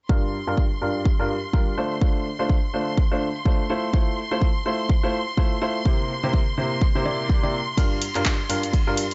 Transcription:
0.09 0.36 G2 medium
0.09 0.36 G3 medium
0.09 0.36 D4 medium
0.09 0.36 F4 medium
0.09 0.36 A#4 medium
0.09 9.14 C6 medium
0.09 kick loud
0.47 0.62 G2 medium
0.47 0.62 G3 medium
0.47 0.62 D4 medium
0.47 0.62 F4 medium
0.47 0.62 A#4 medium
0.57 kick medium
0.82 1.08 G2 medium
0.82 1.08 G3 medium
0.82 1.08 D4 medium
0.82 1.08 F4 medium
0.82 1.08 A#4 medium
1.05 kick loud
1.19 1.34 G2 medium
1.19 1.34 G3 medium
1.19 1.34 D4 medium
1.19 1.34 F4 medium
1.19 1.34 A#4 medium
1.53 1.71 G3 medium
1.53 1.71 D4 medium
1.53 1.71 F4 medium
1.53 1.71 A#4 medium
1.53 kick medium
1.77 1.95 D3 medium
1.77 1.95 A3 medium
1.77 1.95 D4 medium
1.77 1.95 F4 medium
1.77 1.95 C5 medium
2.01 2.28 D3 medium
2.01 2.28 A3 medium
2.01 2.28 D4 medium
2.01 2.28 F4 medium
2.01 2.28 C5 medium
2.01 kick loud
2.39 2.54 D3 medium
2.39 2.54 A3 medium
2.39 2.54 D4 medium
2.39 2.54 F4 medium
2.39 2.54 C5 medium
2.49 kick loud
2.74 3.00 D3 medium
2.74 3.00 A3 medium
2.74 3.00 D4 medium
2.74 3.00 F4 medium
2.74 3.00 C5 medium
2.98 kick loud
3.11 3.26 D3 medium
3.11 3.26 A3 medium
3.11 3.26 D4 medium
3.11 3.27 F4 medium
3.11 3.26 C5 medium
3.46 3.63 A3 medium
3.46 3.63 D4 medium
3.46 3.63 F4 medium
3.46 3.63 C5 medium
3.46 kick loud
3.70 3.87 A3 medium
3.70 3.87 E4 medium
3.70 3.87 F4 medium
3.70 3.87 C5 medium
3.94 4.20 A3 medium
3.94 4.20 E4 medium
3.94 4.20 F4 medium
3.94 4.20 C5 medium
3.94 kick loud
4.31 4.46 A3 medium
4.31 4.46 E4 medium
4.31 4.46 F4 medium
4.31 4.46 C5 loud
4.42 kick loud
4.66 4.92 A3 medium
4.66 4.92 E4 medium
4.66 4.92 F4 medium
4.66 4.92 C5 medium
4.89 kick loud
5.03 5.18 A3 medium
5.03 5.18 E4 medium
5.03 5.18 F4 medium
5.03 5.18 C5 medium
5.37 5.55 A3 medium
5.37 5.55 E4 medium
5.37 5.55 F4 medium
5.37 5.55 C5 medium
5.37 kick loud
5.62 5.79 A3 medium
5.62 5.79 E4 medium
5.62 5.79 F4 medium
5.62 5.79 C5 medium
5.85 6.12 C3 medium
5.85 6.12 A#3 medium
5.85 6.12 E4 medium
5.85 6.12 G4 medium
5.85 6.12 C5 medium
5.85 kick loud
6.23 6.38 C3 medium
6.23 6.38 A#3 medium
6.23 6.38 E4 medium
6.23 6.38 G4 medium
6.23 6.38 C5 medium
6.33 kick loud
6.58 6.84 C3 medium
6.58 6.84 A#3 medium
6.58 6.84 E4 medium
6.58 6.84 G4 medium
6.58 6.84 C5 medium
6.81 kick loud
6.95 7.04 C3 medium
6.95 7.04 A#3 medium
6.95 7.03 E4 medium
6.95 7.04 G4 medium
6.95 7.04 C5 medium
7.05 7.40 C3 medium
7.05 7.40 A#3 medium
7.05 7.40 E4 medium
7.05 7.40 G4 medium
7.05 7.40 D5 medium
7.29 kick medium
7.43 7.58 C3 medium
7.43 7.58 A#3 medium
7.43 7.58 E4 medium
7.43 7.58 G4 medium
7.43 7.58 D5 medium
7.78 8.04 G2 medium
7.78 8.04 G3 medium
7.78 8.04 D4 medium
7.78 8.04 F4 medium
7.78 8.04 A#4 medium
7.78 kick loud
7.78 closed hi-hat soft
7.78 ride medium
8.02 open hi-hat medium
8.02 ride medium
8.15 8.30 G2 medium
8.15 8.30 G3 medium
8.15 8.30 D4 medium
8.15 8.30 F4 medium
8.15 8.30 A#4 medium
8.15 clap soft
8.15 closed hi-hat medium
8.25 kick loud
8.25 snare loud
8.25 clap loud
8.25 closed hi-hat soft
8.25 ride medium
8.49 8.76 G2 medium
8.49 8.76 G3 medium
8.49 8.76 D4 medium
8.49 8.76 F4 medium
8.49 8.76 A#4 medium
8.49 open hi-hat loud
8.49 ride medium
8.63 closed hi-hat medium
8.73 kick loud
8.73 closed hi-hat soft
8.73 ride medium
8.87 9.02 G2 medium
8.87 9.02 G3 medium
8.87 9.02 D4 medium
8.87 9.02 F4 medium
8.87 9.02 A#4 medium
8.97 open hi-hat loud
8.97 ride medium

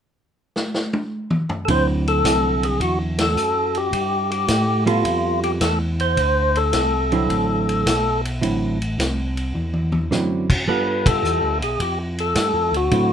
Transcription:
0.56 snare medium
0.74 snare medium
0.93 high tom medium
1.30 mid tom medium
1.49 floor tom medium
1.65 2.23 D2 medium
1.65 3.27 D3 medium
1.65 3.27 F#3 medium
1.65 1.69 A4 medium
1.65 kick soft
1.65 ride medium
1.70 3.27 C4 medium
1.70 3.27 E4 medium
1.70 1.87 C5 loud
2.08 2.66 A4 loud
2.08 ride soft
2.24 2.79 C2 medium
2.24 kick soft
2.24 snare medium
2.24 hi-hat pedal medium
2.24 ride medium
2.63 2.80 G#4 medium
2.63 ride soft
2.80 3.35 E2 medium
2.80 2.99 F#4 medium
2.80 kick soft
2.80 ride medium
3.18 3.78 A4 medium
3.18 snare medium
3.18 ride medium
3.35 3.91 F#2 medium
3.35 hi-hat pedal medium
3.75 4.31 G4 medium
3.75 ride soft
3.92 4.47 G2 medium
3.92 kick soft
3.92 ride medium
4.31 4.84 G4 medium
4.31 ride soft
4.48 5.04 A2 medium
4.48 kick soft
4.48 snare medium
4.48 hi-hat pedal medium
4.48 ride medium
4.86 5.58 G3 medium
4.86 5.58 B3 medium
4.86 5.58 F4 medium
4.86 5.40 F4 medium
4.86 5.58 A4 medium
4.86 ride soft
5.04 5.60 F2 medium
5.04 kick soft
5.04 ride medium
5.43 5.52 G4 medium
5.43 ride soft
5.60 6.16 E2 medium
5.60 5.79 A4 medium
5.60 kick soft
5.60 snare medium
5.60 hi-hat pedal medium
5.60 ride medium
6.00 6.59 C5 loud
6.00 ride soft
6.16 6.72 D2 medium
6.16 kick soft
6.16 ride medium
6.55 8.21 A4 medium
6.55 ride soft
6.73 7.28 C2 medium
6.73 kick soft
6.73 snare medium
6.73 hi-hat pedal medium
6.73 ride medium
7.12 7.83 D3 medium
7.12 7.83 F#3 medium
7.12 7.83 C4 medium
7.12 7.83 E4 medium
7.12 ride soft
7.30 7.85 A1 medium
7.30 kick soft
7.30 ride soft
7.69 ride soft
7.86 8.41 B1 medium
7.86 kick soft
7.86 snare medium
7.86 hi-hat pedal medium
7.86 ride medium
8.25 ride soft
8.41 8.97 A1 medium
8.41 8.77 D3 soft
8.41 8.77 F#3 medium
8.41 8.77 C4 medium
8.41 8.77 E4 medium
8.41 kick soft
8.41 ride medium
8.82 ride soft
8.98 9.53 C2 medium
8.98 kick soft
8.98 snare medium
8.98 hi-hat pedal medium
8.98 ride medium
9.37 ride soft
9.54 10.09 E2 medium
9.54 mid tom soft
9.73 mid tom medium
9.92 mid tom medium
10.11 10.66 F#2 medium
10.11 10.46 D3 medium
10.11 10.46 F#3 medium
10.11 10.46 C4 medium
10.11 10.47 E4 medium
10.11 snare medium
10.11 hi-hat pedal medium
10.50 kick medium
10.50 crash medium
10.67 11.22 G2 medium
10.67 11.54 G3 medium
10.67 11.55 B3 medium
10.67 11.55 F4 medium
10.67 11.55 A4 medium
10.67 11.08 B4 medium
10.67 kick soft
11.06 11.59 A4 medium
11.06 kick medium
11.06 ride medium
11.23 11.42 E2 medium
11.23 hi-hat pedal medium
11.41 11.61 D2 medium
11.60 11.78 B1 medium
11.60 11.81 G#4 medium
11.60 ride soft
11.80 12.34 F2 medium
11.80 11.99 G4 medium
11.80 kick soft
11.80 ride medium
12.18 12.77 A4 medium
12.18 ride soft
12.35 12.54 G2 medium
12.35 kick soft
12.35 snare medium
12.35 hi-hat pedal medium
12.35 ride medium
12.53 12.72 F2 medium
12.72 12.90 D2 medium
12.72 ride soft
12.77 13.13 F#4 loud
12.91 13.13 A2 medium
12.91 13.13 D3 soft
12.91 13.13 F#3 soft
12.91 13.13 C4 soft
12.91 13.13 E4 medium
12.91 kick soft
12.91 ride medium

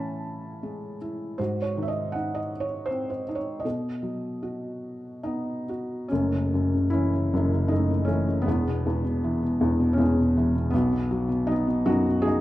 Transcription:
0.00 1.36 A2 soft
0.00 0.97 E3 soft
0.00 1.36 C#4 soft
0.00 1.41 C#5 soft
0.00 1.41 G#5 medium
0.00 1.41 A5 medium
0.00 1.41 B5 medium
0.63 1.37 G#3 soft
1.01 1.38 E4 soft
1.38 3.61 G#2 medium
1.38 2.50 F#4 soft
1.38 1.62 C5 medium
1.62 1.81 C#5 medium
1.77 3.23 D#3 soft
1.83 1.89 E5 medium
1.88 2.15 D#5 medium
2.12 3.27 D#4 soft
2.12 2.39 F#5 medium
2.35 2.63 D#5 medium
2.60 2.88 C#5 medium
2.86 3.08 C5 medium
2.91 3.63 C4 soft
3.10 3.35 C5 medium
3.29 3.65 D#4 soft
3.35 3.63 C#5 medium
3.60 5.19 D#5 medium
3.65 6.06 B2 medium
3.65 5.22 A4 soft
4.03 5.64 F#3 soft
4.43 5.68 F#4 soft
5.23 6.06 B3 soft
5.23 6.12 D#4 medium
5.69 6.10 F#4 soft
6.08 7.33 F#1 medium
6.08 6.52 F#2 medium
6.08 6.89 A3 soft
6.08 6.87 C#4 medium
6.32 6.72 C#3 soft
6.54 7.32 F#2 soft
6.74 7.12 C#3 soft
6.90 7.66 C#4 medium
6.90 7.71 E4 medium
6.94 8.07 E3 soft
7.13 7.51 C#3 soft
7.34 8.44 F#1 medium
7.34 7.71 F#2 medium
7.53 7.89 C#3 soft
7.68 8.06 A3 medium
7.68 8.04 D#4 medium
7.73 8.45 F#2 soft
7.90 8.27 C#3 soft
8.05 8.45 E3 medium
8.05 8.43 A3 medium
8.05 8.46 C#4 medium
8.28 8.46 C#3 soft
8.42 9.93 G#3 medium
8.42 10.00 B3 medium
8.47 9.60 E1 medium
8.47 8.85 E2 medium
8.68 9.03 B2 medium
8.86 9.59 E2 medium
9.05 9.41 B2 medium
9.24 10.36 E3 medium
9.43 9.78 B2 soft
9.61 10.70 E1 medium
9.61 9.98 E2 medium
9.80 10.17 B2 medium
9.93 10.73 C#4 medium
9.98 10.72 E2 soft
9.98 10.69 G#3 medium
10.19 10.53 B2 medium
10.37 10.73 E3 medium
10.55 10.72 B2 soft
10.71 12.41 B1 medium
10.71 10.91 B2 medium
10.71 11.50 B3 medium
10.76 11.09 F#3 medium
10.92 11.27 B2 medium
11.11 11.47 F#3 medium
11.29 11.66 B2 medium
11.47 11.84 F#3 medium
11.47 11.84 D#4 medium
11.52 11.86 B3 medium
11.67 12.05 B2 medium
11.85 12.41 F#2 medium
11.85 12.24 F#3 medium
11.85 12.26 F#4 medium
11.90 12.24 D#4 medium
12.07 12.41 B2 medium
12.22 12.41 F#3 soft
12.22 12.41 G#4 medium
12.27 12.41 D#4 medium

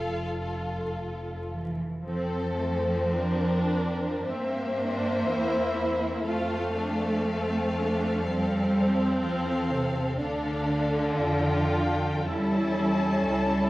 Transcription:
0.00 1.80 F1 medium
0.00 1.46 F2 medium
0.00 1.84 F4 medium
0.00 1.47 A4 medium
0.00 1.84 A4 medium
0.00 0.93 F5 medium
1.51 2.02 E3 medium
2.05 4.22 F2 medium
2.05 4.26 F3 medium
2.05 4.22 C4 medium
2.05 2.55 C4 medium
2.05 3.09 A4 medium
2.05 4.23 C5 medium
2.59 3.13 A3 medium
3.13 4.26 D4 medium
3.13 4.26 A#4 medium
4.26 5.28 G2 medium
4.26 6.26 A#3 loud
4.26 6.22 C4 medium
4.26 4.79 C4 medium
4.26 6.26 C5 medium
4.26 6.22 E5 medium
4.79 5.28 D4 medium
5.28 6.26 E2 medium
5.28 6.26 E4 medium
6.25 9.18 F2 medium
6.25 8.20 A3 loud
6.25 9.17 C4 medium
6.25 6.76 F4 medium
6.25 9.17 A4 medium
6.25 9.18 F5 medium
6.76 7.25 D4 medium
7.26 7.75 C4 medium
7.76 8.24 D4 medium
8.24 9.21 G3 loud
8.24 10.18 C4 medium
9.20 10.18 E2 medium
9.20 9.69 F3 loud
9.20 10.16 C4 medium
9.20 10.16 A4 medium
9.20 10.16 F5 medium
9.70 10.18 C3 medium
10.17 11.17 D2 medium
10.17 12.27 D3 loud
10.17 12.27 D4 medium
10.17 11.16 D4 medium
10.17 12.23 A4 medium
10.17 11.16 F5 medium
11.17 12.25 F2 medium
11.17 12.27 F4 medium
11.17 12.25 G5 medium
12.26 13.29 E2 medium
12.26 13.70 G3 loud
12.26 13.70 C#4 medium
12.26 13.28 E4 medium
12.26 13.70 A4 medium
12.26 13.70 A5 medium
13.29 13.70 C#2 medium
13.29 13.70 E4 medium

